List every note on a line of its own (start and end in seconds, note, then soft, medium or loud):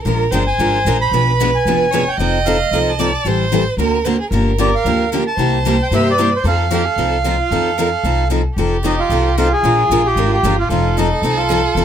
0.04 0.26 A#1 medium
0.04 0.23 F3 medium
0.04 0.24 G#3 medium
0.04 0.24 D4 medium
0.04 0.24 F4 medium
0.04 0.32 A#4 medium
0.04 0.24 A#4 medium
0.31 0.54 G1 medium
0.31 0.42 F3 medium
0.31 0.42 G#3 medium
0.31 0.42 D4 medium
0.31 0.43 F4 medium
0.31 0.43 A#4 medium
0.31 1.14 C5 medium
0.31 0.39 G5 medium
0.47 0.96 G#5 medium
0.58 0.81 G#1 medium
0.58 0.77 F3 medium
0.58 0.77 G#3 medium
0.58 0.78 D4 medium
0.58 0.78 F4 medium
0.58 0.78 A#4 medium
0.85 1.08 A#1 medium
0.85 0.96 F3 medium
0.85 0.96 G#3 medium
0.85 0.97 D4 medium
0.85 0.97 F4 medium
0.85 0.97 A#4 medium
1.01 1.56 B5 loud
1.11 1.54 B1 medium
1.11 1.31 B2 medium
1.11 1.31 F3 medium
1.11 1.31 B3 medium
1.11 1.31 D4 medium
1.11 1.31 G#4 medium
1.11 1.92 B4 medium
1.11 1.32 B4 medium
1.41 1.50 B2 medium
1.41 1.50 F3 medium
1.41 1.50 B3 medium
1.41 1.50 D4 medium
1.41 1.50 G#4 medium
1.41 1.50 B4 medium
1.55 2.09 G#5 medium
1.65 2.08 F1 medium
1.65 1.84 B2 medium
1.65 1.85 F3 medium
1.65 1.85 B3 medium
1.65 1.85 D4 medium
1.65 1.85 G#4 medium
1.65 1.85 B4 medium
1.91 2.02 B2 medium
1.91 2.02 F3 medium
1.91 2.03 B3 medium
1.91 2.03 D4 medium
1.91 2.03 G#4 medium
1.91 2.03 B4 medium
1.91 2.18 C#5 medium
2.08 2.18 G5 medium
2.18 2.61 F1 medium
2.18 2.37 F3 medium
2.18 2.38 C4 medium
2.18 2.38 D#4 medium
2.18 2.38 A4 medium
2.18 3.01 D#5 loud
2.18 2.47 G5 medium
2.45 2.56 F3 medium
2.45 2.56 C4 medium
2.45 2.56 D#4 medium
2.45 2.57 A4 medium
2.45 2.70 F5 medium
2.71 3.14 C2 medium
2.71 2.91 F3 medium
2.71 2.91 C4 medium
2.71 2.91 D#4 medium
2.71 2.91 A4 medium
2.71 2.79 F5 medium
2.90 3.38 A5 medium
2.99 3.09 F3 medium
2.99 3.09 C4 medium
2.99 3.09 D#4 medium
2.99 3.10 A4 medium
2.99 3.29 D5 medium
3.25 3.68 A1 medium
3.25 3.43 E3 medium
3.25 3.44 G3 medium
3.25 3.44 C4 medium
3.25 3.44 E4 medium
3.25 3.44 A4 medium
3.25 3.79 C5 medium
3.52 3.62 E3 medium
3.52 3.62 G3 medium
3.52 3.62 C4 medium
3.52 3.63 E4 medium
3.52 3.63 A4 medium
3.77 4.20 D2 medium
3.77 3.97 D3 medium
3.77 3.97 A#3 medium
3.77 3.97 C4 medium
3.77 3.97 F#4 medium
3.77 3.97 A#4 medium
3.77 4.06 A#4 medium
3.77 3.97 C5 medium
4.04 4.16 D3 medium
4.04 4.16 A#3 medium
4.04 4.16 C4 medium
4.04 4.16 F#4 medium
4.04 4.16 A#4 medium
4.04 4.20 C5 medium
4.04 4.16 C5 medium
4.20 4.30 G#4 medium
4.31 4.74 G1 medium
4.31 4.50 D3 medium
4.31 4.50 F3 medium
4.31 4.51 A#3 medium
4.31 4.51 D4 medium
4.31 4.51 G4 medium
4.31 5.34 A#4 medium
4.58 4.69 D3 medium
4.58 4.69 F3 medium
4.58 4.69 A#3 medium
4.58 4.69 D4 medium
4.58 4.69 G4 medium
4.58 4.75 D5 medium
4.75 5.10 F5 medium
4.84 5.27 D2 medium
4.84 5.04 D3 medium
4.84 5.04 F3 medium
4.84 5.04 A#3 medium
4.84 5.04 D4 medium
4.84 5.04 G4 medium
5.13 5.22 D3 medium
5.13 5.23 F3 medium
5.13 5.23 A#3 medium
5.13 5.23 D4 medium
5.13 5.23 G4 medium
5.27 5.82 A5 loud
5.37 5.80 C2 medium
5.37 5.56 C3 medium
5.37 5.57 G3 medium
5.37 5.57 A#3 medium
5.37 5.57 E4 medium
5.37 5.57 G4 medium
5.37 6.46 C5 medium
5.65 5.75 C3 medium
5.65 5.76 G3 medium
5.65 5.76 A#3 medium
5.65 5.76 E4 medium
5.65 5.76 G4 medium
5.83 5.87 G5 medium
5.91 6.34 G2 medium
5.91 6.10 C3 medium
5.91 6.10 G3 medium
5.91 6.10 A#3 medium
5.91 6.10 E4 medium
5.91 6.10 G4 medium
5.91 6.08 E5 medium
6.11 6.33 D5 medium
6.18 6.28 C3 medium
6.18 6.28 G3 medium
6.18 6.29 A#3 medium
6.18 6.29 E4 medium
6.18 6.29 G4 medium
6.36 6.46 C5 medium
6.44 6.87 F2 medium
6.44 6.63 F3 medium
6.44 6.63 C4 medium
6.44 6.63 D#4 medium
6.44 6.71 A4 medium
6.44 6.64 A4 medium
6.44 8.28 F5 medium
6.71 6.81 F3 medium
6.71 6.81 C4 medium
6.71 6.81 D#4 medium
6.71 6.86 G4 medium
6.71 6.82 A4 medium
6.85 7.24 A4 medium
6.96 7.39 C2 medium
6.96 7.16 F3 medium
6.96 7.16 C4 medium
6.96 7.16 D#4 medium
6.96 7.17 A4 medium
7.24 7.35 F3 medium
7.24 7.35 C4 medium
7.24 7.35 D#4 medium
7.24 7.53 F4 medium
7.24 7.35 A4 medium
7.51 7.93 F2 medium
7.51 7.69 F3 medium
7.51 7.70 C4 medium
7.51 7.70 D#4 medium
7.51 7.79 A4 medium
7.51 7.70 A4 medium
7.77 7.88 F3 medium
7.77 7.88 C4 medium
7.77 7.89 D#4 medium
7.77 7.89 A4 medium
7.77 7.91 A#4 medium
7.92 8.41 A4 medium
8.04 8.46 C2 medium
8.04 8.22 F3 medium
8.04 8.23 C4 medium
8.04 8.23 D#4 medium
8.04 8.23 A4 medium
8.31 8.41 F3 medium
8.31 8.41 C4 medium
8.31 8.41 D#4 medium
8.31 8.41 A4 medium
8.56 8.99 F1 medium
8.56 8.76 F3 medium
8.56 8.76 C4 medium
8.56 8.76 D#4 medium
8.56 9.59 G4 medium
8.56 8.76 A4 medium
8.84 8.94 F3 medium
8.84 8.94 C4 medium
8.84 8.99 D#4 medium
8.84 8.95 D#4 medium
8.84 8.95 A4 medium
8.99 9.36 F4 medium
9.09 9.52 C2 medium
9.09 9.29 F3 medium
9.09 9.29 C4 medium
9.09 9.29 D#4 medium
9.09 9.29 A4 medium
9.37 9.47 F3 medium
9.37 9.47 C4 medium
9.37 9.48 D#4 medium
9.37 9.52 F4 medium
9.37 9.48 A4 medium
9.53 10.07 G#4 loud
9.61 9.84 A#1 medium
9.61 9.82 F3 medium
9.61 9.82 G#3 medium
9.61 9.82 D4 medium
9.61 10.70 F4 medium
9.65 9.82 F4 medium
9.65 9.82 A#4 medium
9.90 10.12 A#1 medium
9.90 10.01 F3 medium
9.90 10.01 G#3 medium
9.90 10.01 D4 medium
9.90 10.01 F4 medium
9.90 10.01 A#4 medium
10.06 10.31 G4 medium
10.16 10.38 G#1 medium
10.16 10.35 F3 medium
10.16 10.35 G#3 medium
10.16 10.35 D4 medium
10.16 10.35 F4 medium
10.16 10.36 A#4 medium
10.33 10.57 G4 medium
10.43 10.66 G1 medium
10.43 10.53 F3 medium
10.43 10.54 G#3 medium
10.43 10.54 D4 medium
10.43 10.54 F4 medium
10.43 10.54 A#4 medium
10.59 10.68 F4 medium
10.68 11.12 F1 medium
10.68 10.88 F3 medium
10.68 10.88 C4 medium
10.68 10.89 D#4 medium
10.68 10.97 F4 medium
10.68 11.85 A4 loud
10.68 10.89 A4 medium
10.97 11.07 F3 medium
10.97 11.07 C4 medium
10.97 11.22 D#4 medium
10.97 11.07 D#4 medium
10.97 11.07 A4 medium
11.22 11.64 C2 medium
11.22 11.41 F3 medium
11.22 11.42 C4 medium
11.22 11.38 D#4 medium
11.22 11.42 D#4 medium
11.22 11.42 A4 medium
11.37 11.85 F4 medium
11.50 11.60 F3 medium
11.50 11.60 C4 medium
11.50 11.60 D#4 medium
11.50 11.60 A4 medium
11.75 11.85 F1 medium
11.75 11.85 F3 medium
11.75 11.85 C4 medium
11.75 11.85 D#4 medium
11.75 11.85 A4 medium